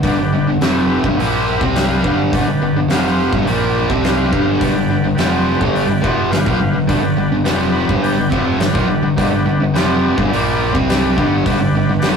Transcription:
0.03 fingered electric bass G1, distorted electric guitar G2 D3, transistor combo organ G4 B4 D5, kick, open hi-hat
0.16 fingered electric bass G1, distorted electric guitar G2 D3
0.30 fingered electric bass G1, distorted electric guitar G2
0.34 distorted electric guitar D3
0.43 fingered electric bass G1
0.48 distorted electric guitar G2 D3
0.57 fingered electric bass F1, distorted electric guitar F2, open hi-hat
0.62 distorted electric guitar C3 F3, transistor combo organ G4 B4 E5, snare
1.04 fingered electric bass G1, distorted electric guitar G2 D3, kick
1.16 fingered electric bass A#1, distorted electric guitar A#2 F3, transistor combo organ G4 E5 B5
1.20 distorted electric guitar A#3, open hi-hat
1.61 fingered electric bass C2, distorted electric guitar C3 G3 C4, kick
1.75 transistor combo organ G4 B4 F5, snare, open hi-hat
2.03 fingered electric bass G1, distorted electric guitar G2 D3 G3, kick
2.32 fingered electric bass G1, distorted electric guitar G2 D3, transistor combo organ G4 B4 D5, kick, open hi-hat
2.47 fingered electric bass G1, distorted electric guitar G2 D3
2.59 fingered electric bass G1, distorted electric guitar G2 D3
2.74 fingered electric bass G1, distorted electric guitar G2 D3
2.87 fingered electric bass F1, distorted electric guitar F2 C3, transistor combo organ G4 B4 F5, snare, open hi-hat
2.92 distorted electric guitar F3
3.33 fingered electric bass G1, distorted electric guitar G2 D3, kick
3.44 fingered electric bass A#1, distorted electric guitar A#2 F3, transistor combo organ G4 D5 B5, open hi-hat
3.48 distorted electric guitar A#3
3.89 fingered electric bass C2, distorted electric guitar C3 G3 C4, kick
4.01 transistor combo organ G4 B4 F5, open hi-hat
4.05 snare
4.32 fingered electric bass G1, distorted electric guitar G2 D3 G3, kick
4.58 fingered electric bass G1, distorted electric guitar G2 D3, transistor combo organ G4 B4 D5, kick, open hi-hat
4.74 fingered electric bass G1, distorted electric guitar G2 D3
4.88 fingered electric bass G1, distorted electric guitar G2 D3
5.02 fingered electric bass G1, distorted electric guitar G2 D3
5.15 fingered electric bass F1, distorted electric guitar F2 C3 F3, transistor combo organ G4 B4 D5, snare, open hi-hat
5.60 fingered electric bass G1, distorted electric guitar G2 D3 G3, kick
5.72 transistor combo organ G4 B4 D5, open hi-hat
5.88 fingered electric bass G1, distorted electric guitar G2 D3
6.01 fingered electric bass F1, distorted electric guitar F2 C3 F3, kick
6.30 fingered electric bass G1, distorted electric guitar G2 D3, transistor combo organ G4 B4 F5, snare, open hi-hat
6.45 fingered electric bass A#1, distorted electric guitar A#2 F3, kick
6.59 fingered electric bass G1, distorted electric guitar G2 D3
6.73 fingered electric bass G1, distorted electric guitar G2 D3
6.87 fingered electric bass G1, distorted electric guitar G2 D3, transistor combo organ G4 B4 D5, kick, open hi-hat
7.02 fingered electric bass G1, distorted electric guitar G2 D3
7.17 fingered electric bass G1, distorted electric guitar G2 D3
7.32 fingered electric bass G1, distorted electric guitar G2 D3
7.44 fingered electric bass F1, distorted electric guitar F2 C3 F3, transistor combo organ G4 B4 D5, snare, open hi-hat
7.72 transistor combo organ B5
7.88 fingered electric bass G1, distorted electric guitar G2 D3 G3, kick
8.02 transistor combo organ G4 B4 D5 G5, open hi-hat
8.17 fingered electric bass G1, distorted electric guitar G2 D3
8.30 fingered electric bass F1, distorted electric guitar F2 C3 F3, transistor combo organ E5, kick
8.59 fingered electric bass G1, distorted electric guitar G2 D3, transistor combo organ G4 B4 D5, snare, open hi-hat
8.73 fingered electric bass A#1, distorted electric guitar A#2 F3, kick
8.88 fingered electric bass G1, distorted electric guitar G2 D3
9.03 fingered electric bass G1, distorted electric guitar G2 D3
9.17 fingered electric bass G1, distorted electric guitar G2 D3, transistor combo organ G4 B4 D5, kick, open hi-hat
9.32 fingered electric bass G1, distorted electric guitar G2 D3
9.46 fingered electric bass G1, distorted electric guitar G2 D3
9.60 fingered electric bass G1, distorted electric guitar G2 D3
9.73 fingered electric bass F1, distorted electric guitar F2 C3 F3, transistor combo organ G4 B4 D5, snare, open hi-hat
10.16 fingered electric bass G1, distorted electric guitar G2 D3, kick
10.28 distorted electric guitar A#2, transistor combo organ G4 D5 B5
10.32 fingered electric bass A#1, distorted electric guitar F3 A#3, open hi-hat
10.73 fingered electric bass C2, distorted electric guitar C3 G3 C4, kick
10.89 transistor combo organ G4 B4 D5, snare, open hi-hat
11.16 fingered electric bass G1, distorted electric guitar G2 D3 G3, kick
11.45 fingered electric bass G1, distorted electric guitar G2 D3, transistor combo organ G4 B4 D5, kick, open hi-hat
11.59 fingered electric bass G1, distorted electric guitar G2 D3
11.73 fingered electric bass G1, distorted electric guitar G2 D3
11.89 fingered electric bass G1, distorted electric guitar G2 D3
11.99 fingered electric bass F1, transistor combo organ G4 B4 D5, snare, open hi-hat
12.03 distorted electric guitar F2 C3 F3

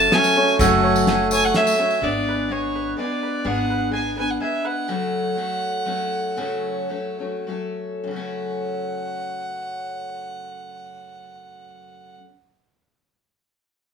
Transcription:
Already playing: steel-string acoustic guitar F#3 A3 C#4, mandolin A3 C#5 G#5, harmonium A3 F#4, fiddle A5
0.12 steel-string acoustic guitar F#3 A3 C#4 G#4, mandolin G#5, fiddle G#5, snare, closed hi-hat
0.24 tambourine
0.36 steel-string acoustic guitar F#3 A3 C#4 G#4, mandolin C#5
0.48 tambourine
0.59 upright bass F#1, steel-string acoustic guitar F#2 C#3 F#3 A3 C#4 G#4, mandolin A3 G#5, fiddle F#5, kick, closed hi-hat, tambourine
0.84 mandolin C#5
0.96 tambourine
1.07 steel-string acoustic guitar F#3 A3 C#4 G#4, mandolin G#5, snare, closed hi-hat, tambourine
1.31 mandolin C#5, fiddle G#5, tambourine
1.45 fiddle F#5
1.54 steel-string acoustic guitar F#3 A3 C#4 G#4, fiddle E5, mandolin G#5, snare, closed hi-hat, tambourine
1.67 tambourine
1.78 steel-string acoustic guitar F#3 A3 C#4 G#4, mandolin C#5, tambourine
1.91 tambourine
2.01 upright bass G#1, steel-string acoustic guitar G#3 B3 D4 G#4, mandolin B3, fiddle D5
2.29 mandolin B4
2.49 steel-string acoustic guitar G#3 B3 D4 G#4, fiddle C#5, mandolin G#5
2.76 mandolin B4
2.97 steel-string acoustic guitar G#3 B3 D4 G#4, fiddle D5, mandolin G#5
3.23 mandolin B4
3.44 upright bass G#1, steel-string acoustic guitar G#3 B3 D4 G#4, mandolin B3, fiddle F#5
3.70 mandolin B4
3.91 steel-string acoustic guitar G#3 B3 D4 G#4, fiddle G#5, mandolin G#5
4.16 steel-string acoustic guitar B3 D4 G#4, mandolin B4, fiddle G#5
4.30 fiddle F#5
4.40 steel-string acoustic guitar G#3 B3 D4 G#4, fiddle E5, mandolin G#5
4.65 mandolin B4, fiddle F#5
4.88 steel-string acoustic guitar F#2 C#3 F#3 A3 C#4 A4
5.36 steel-string acoustic guitar F#3 A3 C#4 A4
5.85 steel-string acoustic guitar F#3 A3 C#4 A4
6.36 steel-string acoustic guitar F#2 C#3 F#3 A3 C#4 A4
6.89 steel-string acoustic guitar F#3 A3 C#4 A4
7.19 steel-string acoustic guitar F#3 A3 C#4 A4
7.47 steel-string acoustic guitar F#3 A3 C#4 A4
8.04 steel-string acoustic guitar F#2 C#3
8.09 steel-string acoustic guitar F#3, fiddle F#5
8.13 steel-string acoustic guitar A3 C#4
8.19 steel-string acoustic guitar A4

